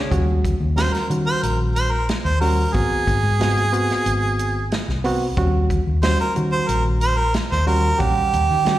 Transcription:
Already playing: C#4 D4
0.00 G#3
0.11 D#2 G3 C#4 F#4, kick, closed hi-hat
0.45 kick, closed hi-hat
0.61 D#2
0.76 G3 C#4 F#4 C5, snare, closed hi-hat
0.93 A#4, snare, closed hi-hat
1.09 D#3 G3 C#4 F#4, closed hi-hat
1.26 C5
1.42 A#1 A#4, closed hi-hat
1.76 C5, closed hi-hat
1.91 A#4
2.09 snare, closed hi-hat
2.25 D#2 C5
2.40 G3 C#4 F#4 A#4, open hi-hat
2.73 G#1 B3 C4 F#4 G#4, kick, closed hi-hat
2.91 muted fingered electric bass stroke
3.07 G#1, kick, closed hi-hat
3.23 G#2
3.40 B3 C4 F#4, snare, closed hi-hat
3.57 closed hi-hat
3.72 B3 C4 F#4, closed hi-hat
3.90 snare, closed hi-hat
4.06 G#1, closed hi-hat
4.39 closed hi-hat
4.72 snare, closed hi-hat
4.88 C2, snare
5.04 B3 C4 F#4, open hi-hat
5.37 D#2 G3 C#4 F#4, kick, closed hi-hat
5.70 kick, closed hi-hat
5.87 D#2
6.03 G3 C#4 F#4 C5, snare, closed hi-hat
6.19 A#4, closed hi-hat
6.35 D#3 G3 C#4 F#4, closed hi-hat
6.52 C5
6.68 A#1 A#4, closed hi-hat
7.01 C5, closed hi-hat
7.17 A#4
7.34 snare, closed hi-hat
7.52 D#2 C5, snare
7.66 G3 C#4 F#4 A#4, open hi-hat
7.99 A#1 G3 C#4 G4 F#5, kick, closed hi-hat
8.18 muted fingered electric bass stroke
8.33 D#2, closed hi-hat
8.51 D#3
8.64 G3 C#4 F#4, snare, closed hi-hat

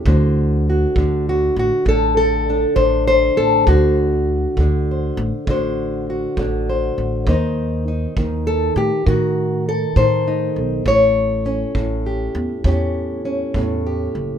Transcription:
0.06 D2 D3 F#4 C5, kick
0.70 F#4
0.96 D2 D3, kick
1.29 F#4
1.56 A1 F#4
1.85 A1 D3 A4, kick
2.17 A4
2.50 D4
2.76 A1 D3 C5, kick
3.08 C5
3.37 A1 A4
3.67 D2 D3 F#4, kick
4.57 D2 D3, kick
4.91 C5
5.17 A1
5.47 A1 D3 F#4 C5, kick
6.10 F#4
6.37 A1 D3, kick
6.70 C5
6.98 A1
7.27 D#2 D#3 D#4 C5, kick
7.88 D#4
8.17 D#2 D#3, kick
8.47 A4
8.76 A2 G4
9.06 A2 D#3 F#4, kick
9.69 A4
9.96 A2 D#3 C5, kick
10.28 D#4
10.56 B1
10.86 A1 A2 C#5, kick
11.46 C#4
11.75 A1 A2, kick
12.06 G4
12.35 E2
12.64 E2 A2 C#4 G4, kick
13.25 C#4
13.54 E2 A2, kick
13.87 G4
14.15 F#1

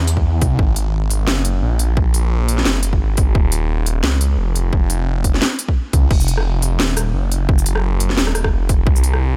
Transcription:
Already playing: E2
0.07 closed hi-hat
0.17 kick
0.42 C2, kick, closed hi-hat
0.59 G#1, kick
0.76 closed hi-hat
1.10 closed hi-hat
1.27 F#1, snare
1.45 closed hi-hat
1.62 A#1
1.79 closed hi-hat
1.97 kick
2.14 closed hi-hat
2.48 closed hi-hat
2.58 snare
2.65 F#1, snare
2.83 closed hi-hat
2.93 kick
3.00 G#1
3.17 kick, closed hi-hat
3.35 D#1, kick
3.52 closed hi-hat
3.86 closed hi-hat
4.04 C#2, snare
4.21 closed hi-hat
4.38 F1
4.56 closed hi-hat
4.73 kick
4.90 closed hi-hat
5.24 kick, closed hi-hat
5.34 snare
5.42 snare
5.59 closed hi-hat
5.68 kick
5.93 C#2, kick, closed hi-hat
6.10 F1, kick, crash
6.20 shaker
6.28 closed hi-hat
6.38 cross-stick
6.62 closed hi-hat
6.80 D#1, snare
6.97 cross-stick, closed hi-hat, shaker
7.14 F#1
7.32 closed hi-hat
7.49 kick
7.58 shaker
7.66 closed hi-hat
7.76 cross-stick
8.00 closed hi-hat
8.10 snare
8.17 D#1, snare
8.27 cross-stick
8.35 cross-stick, closed hi-hat
8.44 kick, cross-stick
8.52 F1
8.69 kick, closed hi-hat
8.87 C2, kick
8.96 shaker
9.04 closed hi-hat
9.14 cross-stick

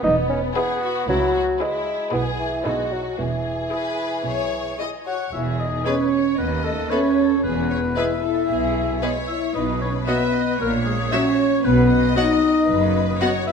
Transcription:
0.03 E1 E2 B3 D#4
0.29 C#4
0.56 B3 E4 G#4 B4
0.82 F#4
1.08 C#2 C#3 F#3 E4
1.35 F#4
1.60 G#3 E4 G#4 B4
2.12 B1 B2 B3 E4 G#4 B4
2.39 E3
2.64 B1 B2 G#3 D#4 F#4 A4 B4
2.92 F#3
3.18 E1 E2 E3 G#4
3.72 E4 G#4 B4
4.25 B1 B2 C#5
4.79 E4 G#4 D#5
5.06 F#4 C#5 F#5
5.33 E1 E2 E4 G#4 E5
5.59 D#4 D#5
5.85 G#3 B3 C#4 G#4 B4 C#5
6.12 C#5
6.38 D#2 B3 B4 D#5
6.63 A3 A4
6.89 A3 B3 C#4 A4 B4 C#5
7.17 A4
7.37 C#4
7.43 E1 E2 B3 G#4 B4
7.70 C#5
7.96 G#3 B3 E4 G#4 B4 E5
8.24 A4
8.49 B1 B2 G#4
9.01 G#3 B3 G#4 B4 C#5
9.28 E4 E5
9.54 B1 B2 D#4 B4 D#5
9.80 C#4 C#5
10.06 F#3 B3 F#4 B4 D#5 E5
10.34 D#5
10.60 A#1 A#2 A#3 A#4 C#5
10.85 G#3 G#4
11.11 F#3 C#4 F#4 C#5 E5
11.64 B1 B2 B3 B4
11.91 D#5
12.16 F#3 B3 D#4 F#4 D#5 F#5
12.69 F#1 F#2 B4
13.21 F#3 B3 F#4 C#5 D#5 F#5
13.47 E4 B4 E5

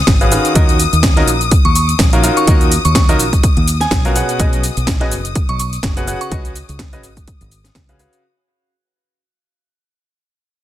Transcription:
Already playing: D#6
0.07 G#1, kick, snare, closed hi-hat, shaker
0.21 C#3 C#4 F#4 G#4 B4 F5, closed hi-hat, shaker
0.32 D#3 C#4 F#4 G#4 B4 F5, open hi-hat, shaker
0.45 closed hi-hat, shaker
0.55 D#2 D#3 C#4 F4 F#4 A#4 D#5, kick, closed hi-hat, shaker
0.69 closed hi-hat, shaker
0.80 open hi-hat, shaker
0.93 D#2, closed hi-hat, shaker
1.03 kick, snare, closed hi-hat, shaker
1.16 D#3 C#4 F4 F#4 A#4 D#5, snare, closed hi-hat
1.27 A#1, open hi-hat, shaker
1.41 closed hi-hat, shaker
1.51 kick, closed hi-hat, shaker
1.65 D#2 C#6, closed hi-hat
1.75 C#6, open hi-hat, shaker
1.89 closed hi-hat, shaker
1.99 A#1, kick, snare, closed hi-hat, shaker
2.13 D#3 C#4 F4 F#4 A#4 F5, closed hi-hat, shaker
2.24 D#3 C#4 F4 F#4 A#4 F5, open hi-hat, shaker
2.37 C#6, closed hi-hat, shaker
2.47 D#2 D#3 C#4 F4 F#4 A#4 D#5, kick, closed hi-hat, shaker
2.61 closed hi-hat, shaker
2.72 open hi-hat, shaker
2.85 D#2 C#6, closed hi-hat, shaker
2.95 C#6, kick, snare, closed hi-hat, shaker
3.09 D#3 C#4 F4 F#4 A#4 D#5, closed hi-hat, shaker
3.19 A#1, open hi-hat, shaker
3.33 kick, closed hi-hat, shaker
3.44 kick, closed hi-hat, shaker
3.57 D#2, closed hi-hat
3.68 open hi-hat, shaker
3.81 G#5, snare, closed hi-hat, shaker
3.91 B1, kick, snare, closed hi-hat, shaker
4.05 B2 C#4 F4 F#4 A#4 F5, closed hi-hat, shaker
4.16 B2 C#4 F#4 G#4 B4 F#5, open hi-hat, shaker
4.29 closed hi-hat, shaker
4.40 B1 B2 C#4 F#4 G#4 B4 D#5, kick, closed hi-hat, shaker
4.53 closed hi-hat, shaker
4.64 open hi-hat, shaker
4.77 B1, closed hi-hat, shaker
4.87 kick, snare, closed hi-hat, shaker
5.00 B2 C#4 F#4 G#4 B4 D#5, snare, closed hi-hat
5.12 F#1, open hi-hat, shaker
5.25 closed hi-hat, shaker
5.35 kick, closed hi-hat, shaker
5.49 B1 C#6, closed hi-hat
5.59 C#6, open hi-hat, shaker
5.73 closed hi-hat, shaker
5.83 F#1, kick, snare, closed hi-hat, shaker
5.97 B2 C#4 F#4 G#4 B4 F#5, closed hi-hat, shaker
6.08 C#3 C#4 F#4 G#4 B4 F#5, open hi-hat, shaker
6.21 C#6, closed hi-hat, shaker
6.32 C#2 C#3 C#4 F#4 G#4 B4 D#5, kick, closed hi-hat, shaker
6.45 closed hi-hat, shaker
6.56 open hi-hat, shaker
6.69 C#2, closed hi-hat, shaker
6.79 kick, snare, closed hi-hat, shaker
6.93 C#3 C#4 F#4 G#4 B4 D#5, closed hi-hat, shaker
7.03 G#1, open hi-hat, shaker
7.17 kick, closed hi-hat, shaker
7.28 kick, closed hi-hat, shaker
7.41 G#1, closed hi-hat, shaker
7.51 open hi-hat, shaker
7.64 snare, closed hi-hat, shaker
7.75 C#2, kick, snare, closed hi-hat, shaker
7.89 C#3 C#4 F#4 G#4 B4 F5, closed hi-hat, shaker
7.99 C#3 C#4 F#4 G#4 B4 F5, open hi-hat, shaker
8.13 closed hi-hat, shaker

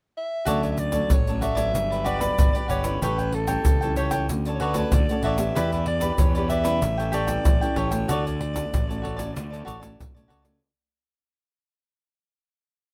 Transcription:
0.17 E5
0.45 D2 D3 F#3 A3 C#4 F#4 A4 C#5 D5, pandeiro, shaker, surdo
0.62 A4 C#5 D5, pandeiro, shaker, surdo
0.72 E5
0.77 D5, muted cavaquinho stroke, pandeiro, shaker
0.92 F#3 A3 C#4 A4 C#5 D5, pandeiro, shaker, surdo
1.10 A1 A2 C#5, pandeiro, shaker, surdo
1.27 F#3 A3 C#4 A4 C#5 D5, pandeiro, shaker
1.41 F#4 A4 C#5 D5 E5, pandeiro, shaker
1.55 F#3 B3 D4 A4 C#5 D5, pandeiro, shaker, surdo
1.74 G1 G2, muted cavaquinho stroke, pandeiro, shaker, surdo
1.90 G4 B4 D5, pandeiro, shaker
2.04 F#4 G4 B4 D5, pandeiro, shaker, surdo
2.19 F#3 B3 D4 G4 B4 D5, pandeiro, shaker, surdo
2.38 G1 D3, pandeiro, shaker, surdo
2.53 F#3 B3 D4 G4 B4 D5, pandeiro, shaker
2.68 G1 F#4 G4 B4 C#5 D5, pandeiro, shaker
2.83 G3 C#4 E4 G4 B4 D5, pandeiro, shaker
3.02 A1 A2 G4 A4 B4 C#5 G5, pandeiro, shaker, surdo
3.18 A4 C#5 G5, pandeiro, shaker, surdo
3.32 A4, muted cavaquinho stroke, pandeiro
3.48 G3 C#4 E4 A4 C#5 G5, pandeiro, shaker, surdo
3.65 C#2 E3, pandeiro, shaker, surdo
3.81 G3 C#4 E4 A4 C#5 G5, pandeiro, shaker
3.96 G4 A4 C#5 G5, pandeiro, shaker
4.11 A4 C#5 G5, pandeiro, shaker, surdo
4.29 D2 D3 A3 C#4 F#4, muted cavaquinho stroke, pandeiro, shaker, surdo
4.45 A4 C#5 D5, pandeiro, shaker
4.55 C#5
4.60 F#4 A4 B4 C#5 D5, pandeiro
4.74 A3 C#4 F#4 C#5 D5, pandeiro, shaker, surdo
4.78 A4
4.92 D2 A2 D5, pandeiro, shaker, surdo
5.09 A3 C#4 F#4 A4 C#5 D5, pandeiro, shaker
5.23 A1 F#4 A4 C#5 D5 E5, pandeiro
5.37 B3 D4 G4 A4 C#5 D5, pandeiro, shaker
5.55 E2 E3 E4 G4 B4 D5, pandeiro, shaker, surdo
5.72 G4 B4 D5, pandeiro, shaker, surdo
5.86 D5, muted cavaquinho stroke, pandeiro
6.00 B3 D4 G4 B4 D5, pandeiro, shaker, surdo
6.18 E2 B2 C#5, pandeiro, shaker, surdo
6.35 B3 D4 G4 B4 D5, pandeiro, shaker
6.48 E4 G4 B4 D5 E5, pandeiro, shaker
6.64 G3 C#4 E4 G4 B4 D5, pandeiro, shaker, surdo
6.81 A1 A2, muted cavaquinho stroke, pandeiro, shaker, surdo
6.97 A4 C#5 G5, pandeiro, shaker
7.12 G4 A4 C#5 D5 G5, pandeiro, shaker
7.27 G3 C#4 E4 A4 G5, pandeiro, shaker, surdo
7.45 A1 E3, pandeiro, shaker, surdo
7.61 G3 C#4 E4 A4 C#5 G5, pandeiro, shaker
7.76 A1 G4 A4 C#5 G5, pandeiro
7.91 A3 F#4 A4 C#5 G5, pandeiro, shaker
8.08 D2 D3 F#4 A4 C#5 D5, pandeiro, shaker, surdo
8.25 C#5 D5, pandeiro, shaker, surdo
8.40 muted cavaquinho stroke, pandeiro
8.53 A3 C#4 F#4 A4 D5, pandeiro, shaker, surdo
8.71 A1 A2, pandeiro, shaker, surdo
8.87 A3 C#4 F#4 A4 C#5 D5, pandeiro, shaker
9.02 F#4 A4 C#5 D5, pandeiro
9.17 A3 C#4 F#4 A4 C#5 D5, pandeiro, shaker, surdo
9.34 D2 D3 A3 F#4, muted cavaquinho stroke, pandeiro, shaker, surdo
9.50 A4 C#5 D5, pandeiro, shaker
9.65 A1 F#4 A4 C#5 D5, pandeiro, shaker, surdo
9.80 A3 C#4 F#4 A4 C#5 D5, pandeiro, shaker, surdo
9.99 B1 A2, pandeiro, shaker, surdo
10.14 A3 C#4 F#4 A4 C#5 D5, pandeiro, shaker
10.28 C#2 F#4 A4 C#5 D5, pandeiro
10.42 A3 A4 C#5 D5, pandeiro, shaker
10.46 C#4 F#4

